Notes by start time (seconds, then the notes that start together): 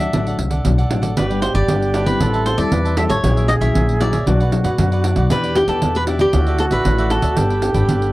Already playing: A2 E5
0.00 A4 D5 F#5
0.13 A1 D3 F#3 A3 D4 A4 D5 F#5, pandeiro
0.27 A4 D5 F#5, pandeiro
0.38 C2, muted cavaquinho stroke, pandeiro
0.50 A4 D5 F#5, pandeiro
0.65 B1 A2 F#3 A3 D4, pandeiro
0.78 A4 D5 F#5, pandeiro
0.90 A1 F#3 A3 D4 A4 D5 F#5, pandeiro
1.02 A4 D5 F#5, pandeiro
1.16 G1 G2 G3 B3 D4 G4 B4 D5, pandeiro
1.29 G3 B3 D4 G4 B4 D5, pandeiro
1.42 C5, muted cavaquinho stroke, pandeiro
1.54 G1 G4 B4 D5, pandeiro
1.68 G1 D3 G3 B3 D4 G4 B4 D5, pandeiro
1.82 pandeiro
1.94 D4 G4 B4 D5, pandeiro
2.06 G3 C4 E4 G4 B4 D5, pandeiro
2.20 A1 A2 G4 A4 C5 E5 A5, pandeiro
2.33 C5 E5 A5, pandeiro
2.46 C5, muted cavaquinho stroke, pandeiro
2.57 E2 G3 C4 E4 C5 D5 E5 A5, pandeiro
2.72 E2 E3 B4, pandeiro
2.85 C5 E5 A5, pandeiro
2.97 G3 C4 E4 G4 A4 C5 E5 A5, pandeiro
3.09 A1 C5 C#5 E5 A5, pandeiro
3.23 A#1 A#2 F#3 C#4 E4 F#4 G#4 A#4 C#5 E5, pandeiro
3.36 A#4 C#5 E5, pandeiro
3.48 D#5, muted cavaquinho stroke, pandeiro
3.61 A#1 F#3 C#4 E4 A#4 C#5 E5, pandeiro
3.75 A#1 A#2 F#4 A#4 C#5 E5, pandeiro
3.89 pandeiro
4.00 F#3 C#4 E4 F#4 A#4 C#5 D5 E5, pandeiro
4.13 A#4 C#5 E5, pandeiro
4.26 B1 B2 F#3 B3 D4 F#4 B4 D5 F#5, pandeiro
4.40 B4 D5 F#5, pandeiro
4.52 F#3 B3 D4, muted cavaquinho stroke, pandeiro
4.64 F#2 B4 D5 F#5, pandeiro
4.78 F#2 F#3 B3 D4, pandeiro
4.92 B4 D5 F#5, pandeiro
5.04 D4 B4 D5 F#5, pandeiro
5.16 B1 B4 D5 F#5, pandeiro
5.30 E2 E3 B3 D4 E4 G4 B4 D5, pandeiro
5.44 G4 B4 D5, pandeiro
5.55 B3 D4 G4, muted cavaquinho stroke, pandeiro
5.68 E2 B3 D4 G4 A4 B4 D5, pandeiro
5.82 E2 B2 E4 G4 B4 D5, pandeiro
5.95 B4, pandeiro
6.07 B3 D4 E4 G4 B4 D5, pandeiro
6.19 G4 B4 D5, pandeiro
6.33 D2 D3 A3 E4 F#4 A4 D5 E5, pandeiro
6.47 A4 D5 E5, pandeiro
6.58 A4, pandeiro
6.71 A1 A4 B4 D5 E5, pandeiro
6.85 A1 A2 A3 E4 F#4, pandeiro
6.98 A4 D5 E5, pandeiro
7.10 F#4 A4 D5 E5, pandeiro
7.22 D2 A4 D5 E5, pandeiro
7.37 G1 G3 B3 D4 G4 A4 B4 G5, pandeiro
7.50 A4 B4 G5, pandeiro
7.62 B3 D4 A4, muted cavaquinho stroke, pandeiro
7.74 G1 B3 D4 A4 B4 G5, pandeiro
7.88 G1 D3 D4 A4 B4 G5, pandeiro
8.02 pandeiro